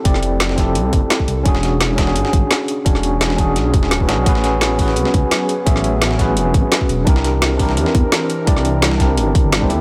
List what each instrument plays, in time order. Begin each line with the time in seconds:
Already playing: tine electric piano C4 E4 G4 A4
0.04 detuned saw bass F1, tine electric piano C4 E4 G4 D5, kick, closed hi-hat
0.14 snare
0.23 closed hi-hat
0.40 snare, closed hi-hat
0.49 snare
0.56 tine electric piano C4 E4 G4, kick, snare, closed hi-hat
0.60 tine electric piano A4
0.75 detuned saw bass C2, closed hi-hat
0.93 detuned saw bass F1, kick, closed hi-hat
1.10 snare, closed hi-hat
1.20 kick
1.28 detuned saw bass C2, closed hi-hat
1.43 detuned saw bass E1, tine electric piano C#4 D4 F#4, kick, closed hi-hat
1.48 tine electric piano G#4
1.55 snare
1.63 snare, closed hi-hat
1.81 snare, closed hi-hat
1.96 tine electric piano C#4 D4 F#4, kick, snare, closed hi-hat
2.00 tine electric piano G#4
2.07 snare
2.16 detuned saw bass G#1, closed hi-hat
2.25 snare
2.33 detuned saw bass G#1, kick, closed hi-hat
2.51 snare, closed hi-hat
2.68 closed hi-hat
2.85 detuned saw bass E1, tine electric piano C#4 D4 F#4 C#5, kick, closed hi-hat
2.95 snare
3.03 closed hi-hat
3.21 snare, closed hi-hat
3.30 snare
3.36 tine electric piano C#4 D4 F#4, kick, closed hi-hat
3.41 tine electric piano G#4
3.56 detuned saw bass B1, snare, closed hi-hat
3.74 detuned saw bass E1, kick, closed hi-hat
3.83 snare
3.91 detuned saw bass D1, snare, closed hi-hat
3.99 tine electric piano C#4 D4 F#4 B4, kick
4.07 detuned saw bass G#1, tine electric piano C#4 D4 F#4 G#4, snare, closed hi-hat
4.18 detuned saw bass B1
4.24 detuned saw bass A1, analog synth pad F#3 B3 C#4 G#4, tine electric piano C#4 F#4 G#4, kick, closed hi-hat
4.29 tine electric piano B4
4.35 snare
4.44 snare, closed hi-hat
4.61 snare, closed hi-hat
4.77 tine electric piano C#4 F#4 G#4, kick, closed hi-hat, open hi-hat
4.81 tine electric piano B4
4.88 snare
4.96 detuned saw bass C#2, closed hi-hat
5.05 snare
5.14 detuned saw bass C#2, kick, closed hi-hat
5.31 snare, closed hi-hat
5.49 closed hi-hat
5.66 detuned saw bass A1, tine electric piano C#4 F#4 G#4 E5, kick, closed hi-hat
5.76 snare
5.84 closed hi-hat
6.02 snare, closed hi-hat
6.11 snare
6.17 tine electric piano C#4 F#4 G#4, kick, snare, closed hi-hat
6.21 tine electric piano B4
6.37 detuned saw bass E1, closed hi-hat
6.54 detuned saw bass A1, kick, closed hi-hat
6.72 snare, closed hi-hat
6.81 kick
6.89 detuned saw bass E1, closed hi-hat
7.05 detuned saw bass C2, analog synth pad E3 C4 A#4, tine electric piano D4 E4 G4, kick, closed hi-hat
7.09 tine electric piano A#4
7.16 snare
7.24 snare, closed hi-hat
7.42 snare, closed hi-hat
7.57 tine electric piano D4 E4 G4, kick, closed hi-hat, open hi-hat
7.62 tine electric piano A#4
7.69 snare
7.77 detuned saw bass E2, closed hi-hat
7.86 snare
7.95 detuned saw bass E2, kick, closed hi-hat
8.12 snare, closed hi-hat
8.30 closed hi-hat
8.46 detuned saw bass C2, tine electric piano D4 E4 G4 D5, kick, closed hi-hat
8.57 snare
8.65 closed hi-hat
8.82 snare, closed hi-hat
8.91 snare
8.98 tine electric piano D4 E4 G4, kick, snare, closed hi-hat
9.02 tine electric piano A#4
9.17 detuned saw bass G1, closed hi-hat
9.35 kick, closed hi-hat
9.44 detuned saw bass G1
9.52 snare, closed hi-hat
9.60 tine electric piano D4 E4 G4 C5, kick
9.69 detuned saw bass F2, analog synth pad G3 E4 A4, tine electric piano C4 E4 G4 A4, closed hi-hat